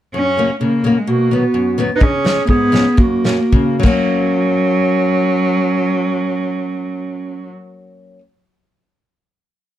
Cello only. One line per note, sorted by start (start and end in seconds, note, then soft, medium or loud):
0.14 0.58 C#4 medium
0.61 0.99 A#3 medium
0.98 1.10 G#3 medium
1.08 1.35 A#3 medium
1.34 1.80 B3 medium
1.96 2.04 D#4 medium
2.02 2.47 C#4 medium
2.48 3.00 B3 loud
2.98 3.81 A#3 medium
3.82 7.49 F#3 medium